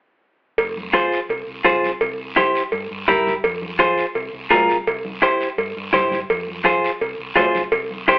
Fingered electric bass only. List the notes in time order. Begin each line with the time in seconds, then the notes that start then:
0.58 F1
1.29 C2
1.47 C2
1.65 C2
2.02 C2
2.73 G2
2.91 G2
3.09 G2
3.45 F2
4.16 C2
4.33 C2
4.51 C2
4.88 C2
5.58 G2
5.77 G2
5.94 G2
6.30 F2
7.01 C2
7.19 C2
7.37 C#2
7.73 C2